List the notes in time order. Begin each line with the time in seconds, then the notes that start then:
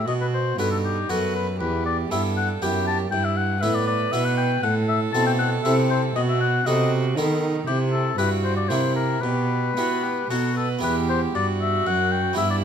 0.07 B2 F#4 D#5
0.21 B4
0.34 C5
0.58 G2 B3 D#4 F#4 A4 B4
0.71 A4
0.84 G4
1.09 F#2 B3 F#4 A4 B4
1.35 B4
1.60 E2 G4 B4
1.86 D5
2.11 G2 B3 E4 G4 A4 E5
2.37 F#5
2.62 F#2 B3 E4 G4 G5
2.87 A5
3.12 G2 E4 G5
3.25 E5
3.37 F#5
3.61 A2 B3 E4 B4 E5
3.75 D5
3.87 D5
4.12 B2 B3 E4 B4 E5
4.25 F#5
4.37 G5
4.63 A2 A4 F#5
4.89 E5
5.13 B2 C4 E4 A4 A5
5.27 G5
5.39 F#5
5.64 C3 C4 E4 A4 E5
5.90 C5
6.16 B2 F#4 D#5
6.29 E5
6.41 F#5
6.66 C3 B3 D#4 F#4 A4 D#5
7.16 D#3 B3 D#4 A4
7.67 C3 E4 G4
7.92 A4
8.18 G2 E4 F#4 G4 B4
8.44 C5
8.57 D5
8.69 C3 A#3 E4 G4 C5
8.96 A#4
9.22 B2 G4 B4
9.77 B3 E4 F#4 G4
10.03 G4
10.30 B2 B3 D#4 F#4 A4
10.57 A4 B4
10.79 B3 E4 G4
10.83 E2 G4 B4
11.09 C5
11.35 G2 F#4 D5
11.61 E5
11.87 F#2 F#5
12.12 G5
12.33 B3 E4 G4 E5
12.37 G2 E4
12.51 D5